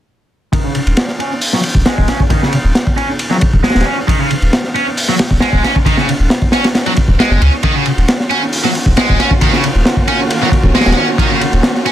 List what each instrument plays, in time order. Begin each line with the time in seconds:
0.53 distorted electric guitar D#3, kick, ride
0.64 distorted electric guitar C#3
0.75 ride
0.86 sub bass D#1, ride
0.97 snare, ride
1.08 snare
1.20 distorted electric guitar C#4, ride
1.41 open hi-hat
1.53 distorted electric guitar F#3, snare
1.63 ride
1.75 sub bass D#1, kick
1.86 distorted electric guitar G#3, snare, ride
1.98 sub bass D#1, kick
2.08 distorted electric guitar C#4, snare, ride
2.20 kick
2.30 distorted electric guitar D#3, kick, ride
2.42 distorted electric guitar C#3, snare
2.53 ride
2.64 sub bass D#1
2.75 snare, ride
2.87 kick
2.97 distorted electric guitar C#4, ride
3.19 ride
3.31 distorted electric guitar F#3, snare
3.41 kick, ride
3.53 sub bass D#1, kick
3.64 distorted electric guitar G#3, snare, ride
3.69 snare, ride
3.75 sub bass D#1, snare, ride
3.80 snare, ride
3.86 distorted electric guitar C#4
4.08 distorted electric guitar D#3, kick, ride
4.20 distorted electric guitar C#3
4.30 ride
4.42 sub bass D#1, ride
4.53 snare, ride
4.64 snare
4.75 distorted electric guitar C#4, ride
4.97 open hi-hat
5.08 distorted electric guitar F#3, snare
5.19 snare, ride
5.31 sub bass D#1, kick
5.40 distorted electric guitar G#3, snare, ride
5.53 sub bass D#1, kick
5.64 distorted electric guitar C#4, snare, ride
5.76 kick
5.86 distorted electric guitar D#3, kick, ride
5.97 distorted electric guitar C#3, snare
6.09 ride
6.20 sub bass D#1
6.30 snare, ride
6.42 kick
6.52 distorted electric guitar C#4, snare, ride
6.64 snare, ride
6.75 snare, ride
6.86 distorted electric guitar F#3, ride
6.96 kick, ride
7.08 sub bass D#1, kick
7.19 distorted electric guitar G#3, snare, ride
7.31 sub bass F#1, snare
7.41 sub bass C#2, distorted electric guitar C#4, ride
7.63 string section D#3 A#3 C#4 F4 F#4, distorted electric guitar D#3, kick, ride
7.75 distorted electric guitar C#3
7.86 ride
7.97 sub bass D#1, ride
8.08 snare, ride
8.20 snare
8.31 distorted electric guitar C#4, ride
8.53 open hi-hat
8.65 distorted electric guitar F#3, snare
8.75 ride
8.86 sub bass D#1, kick
8.97 distorted electric guitar G#3, snare, ride
9.09 sub bass D#1, kick
9.19 distorted electric guitar C#4, snare, ride
9.31 kick
9.41 distorted electric guitar D#3, kick, ride
9.53 distorted electric guitar C#3, snare
9.64 ride
9.75 sub bass D#1
9.85 snare, ride
9.97 kick
10.08 distorted electric guitar C#4, ride
10.30 ride
10.42 distorted electric guitar F#3, snare
10.52 kick, ride
10.63 sub bass D#1, kick
10.75 distorted electric guitar G#3, snare, ride
10.81 snare, ride
10.86 sub bass D#1, snare, ride
10.91 snare, ride
10.97 distorted electric guitar C#4
11.18 distorted electric guitar D#3, kick, ride
11.31 distorted electric guitar C#3
11.41 ride
11.53 sub bass D#1, ride
11.63 snare, ride
11.75 snare
11.86 distorted electric guitar C#4, ride